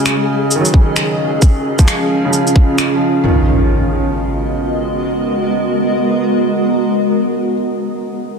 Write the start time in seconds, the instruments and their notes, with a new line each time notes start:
Already playing: ambient pad C#4 G#4 D#5, synth texture G#4
0.06 finger snap, shaker
0.12 ambient pad G#4
0.50 ambient pad F4, shaker
0.56 upright piano D#3
0.61 upright piano F#3
0.65 shaker
0.74 kick
0.96 finger snap, shaker
1.42 kick, shaker
1.79 upright piano F3, kick, shaker
1.84 upright piano G#3, finger snap, shaker
2.25 upright piano C#3
2.30 upright piano F3, shaker
2.47 shaker
2.56 kick
2.78 finger snap, shaker
2.95 upright piano F3
3.23 upright piano D#3, ambient pad G#3, impact
3.32 ambient pad B3
3.40 ambient pad F#4
3.46 ambient pad A#4
3.53 ambient pad D#5